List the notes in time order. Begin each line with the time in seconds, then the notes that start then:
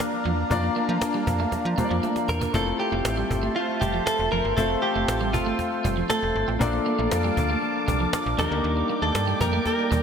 Already playing: A#3 D4 F4 A#4 D5 F5 A#5
0.00 cajon slap
0.25 E2 F3, cajon slap
0.50 F2 A#3 D4 F4 D5, cajon bass
0.64 muted clean electric guitar stroke
0.76 A#3, cajon slap
0.89 F3 A3
1.01 cajon slap
1.14 G3
1.27 F2, muted clean electric guitar stroke, cajon bass
1.39 A3, cajon slap
1.52 F3, muted clean electric guitar stroke, cajon bass, cajon slap
1.65 F3
1.78 G3 A#3 D4 F4 C5, cajon bass
1.85 D5
1.91 F2 F3
2.03 A3, cajon slap
2.16 muted clean electric guitar stroke, cajon slap
2.29 E2 A#4, cajon bass
2.41 A#3, cajon bass
2.53 F1 A3 C4 E4 F4 A4 C5 E5 A5 C6, cajon bass
2.67 muted clean electric guitar stroke, cajon slap
2.79 C4 G4, cajon slap
2.92 F1 A3, cajon slap
3.05 A1, cajon slap
3.17 G3, cajon slap
3.30 G1, muted clean electric guitar stroke, cajon bass
3.43 A3, cajon slap
3.56 A3 F4 C5, muted clean electric guitar stroke, cajon slap
3.69 cajon slap
3.81 F1 G3 G4, cajon bass
3.94 F3, cajon slap
4.06 A4, cajon slap
4.19 E1, cajon slap
4.32 F1 F3 A#4
4.45 G1, cajon slap
4.56 F1 A3 C4 F4 A4 C5 E5 G5, cajon bass
4.70 muted clean electric guitar stroke
4.82 C4 G4, cajon slap
4.95 F1 A3, cajon slap
5.08 A1, cajon slap
5.21 G3, cajon slap
5.33 G1 F4, muted clean electric guitar stroke, cajon bass
5.46 A3, cajon slap
5.59 muted clean electric guitar stroke, cajon bass, cajon slap
5.72 cajon slap
5.84 F1 G3, cajon bass
5.97 F3
6.10 A3 A4, cajon slap
6.23 E1, muted clean electric guitar stroke, cajon slap
6.35 G1
6.48 A1 C4, cajon slap
6.59 A#1 F3 A#3 D4 F4 A4 D5 F5 A5 D6, cajon bass
6.73 muted clean electric guitar stroke, cajon slap
6.86 A#3, cajon slap
6.99 A#1 A3, cajon slap
7.11 F2, cajon slap
7.24 G3, cajon slap
7.37 D2, muted clean electric guitar stroke, cajon bass
7.49 A3, cajon slap
7.62 muted clean electric guitar stroke, cajon slap
7.75 cajon slap
7.88 C2 G3, cajon bass
8.00 F3, cajon slap
8.13 cajon slap
8.26 A#1, cajon slap
8.37 D#2 F3 G3 A#3 D4 D#4 G4 A#4 D5 G5 D6, cajon bass
8.51 D2, cajon slap
8.64 D#2, cajon slap
8.77 muted clean electric guitar stroke, cajon slap
8.89 A#3, cajon slap
9.02 D#2 A3 A4, cajon slap
9.15 G2, cajon slap
9.28 G3, cajon slap
9.40 F2 A#4, muted clean electric guitar stroke, cajon bass
9.53 A3
9.66 A#4, muted clean electric guitar stroke, cajon bass, cajon slap
9.79 cajon slap
9.91 D#2 G3, cajon bass